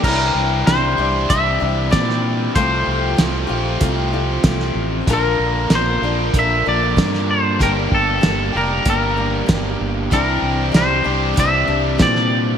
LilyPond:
<<
  \new Staff \with { instrumentName = "Clean electric guitar" } { \time 4/4 \key c \mixolydian \tempo 4 = 95 bes'4 c''4 e''4 d''4 | c''2. r4 | bes'4 c''4 e''8 d''4 c''8 | bes'8 a'4 bes'8 bes'4. r8 |
bes'4 c''4 e''4 d''4 | }
  \new Staff \with { instrumentName = "Grand piano" } { \time 4/4 \key c \mixolydian r1 | r1 | r1 | r1 |
<e' c'' d''>4 <e' c'' d''>4 <e' c'' d''>4 <e' c'' d''>4 | }
  \new Staff \with { instrumentName = "Steel-string acoustic guitar" } { \time 4/4 \key c \mixolydian <c e g c' d' g'>4 <g c' d' g'>8 <g c' d' g'>8 <g c' d' g'>8 <g c' d' g'>8 <g c' d' g'>4 | <c a c' f' g'>4 <a c' f' g'>8 <c' f' g'>8 <a c' f' g'>8 <c' f' g'>8 <a c' f' g'>4 | <bes, d f bes d' bes'>4 <f bes d' bes'>8 <f bes d' bes'>8 <f bes d' bes'>8 <f bes d' bes'>8 <f bes d' bes'>4 | <g, d g bes g'>4 <g bes g' a'>8 <g bes g'>8 <g bes g'>8 <g bes g'>8 <g bes g'>4 |
<c e g c' d' g'>4 <g c' d' g'>8 <g c' d' g'>8 <g c' d' g'>8 <g c' d' g'>8 <g c' d' g'>4 | }
  \new Staff \with { instrumentName = "Overdriven electric guitar" } { \clef bass \time 4/4 \key c \mixolydian <c e g c' e'>4. <c e g c' e'>2~ <c e g c' e'>8 | <c f a c' f'>4. <c f a c' f'>2~ <c f a c' f'>8 | <bes, d bes d' f'>4. <bes, d bes d' f'>2~ <bes, d bes d' f'>8 | <g, d g bes d' g'>4. <g, d g bes d' g'>2~ <g, d g bes d' g'>8 |
<c e g c' g'>4. <c e g c' g'>2~ <c e g c' g'>8 | }
  \new Staff \with { instrumentName = "Fingered electric bass" } { \clef bass \time 4/4 \key c \mixolydian c,8 c,8 c,8 c,8 c,8 c,8 bes,4 | c,8 c,8 c,8 bes,,8 c,4 c,8 a,,8 | bes,,8 bes,,8 bes,,8 bes,,8 bes,,8 bes,,8 g,4 | g,,8 g,,8 g,,8 f,,8 g,,4 g,,8 g,,8 |
c,8 c,8 c,8 c,8 c,8 c,8 bes,4 | }
  \new DrumStaff \with { instrumentName = "Drums" } \drummode { \time 4/4 <cymc bd>4 <hh sn>4 <hh bd>4 <hh bd sn>16 sn8. | <hh bd>4 <hh sn>4 <hh bd>4 <hh bd sn>16 sn8. | <hh bd>4 <hh sn>4 <hh bd>4 <hh bd sn>16 sn8. | <hh bd>8 bd8 <hh sn>4 <hh bd>4 <hh bd sn>4 |
<hh bd>4 <hh sn>4 <hh bd>4 <hh bd sn>16 sn8. | }
>>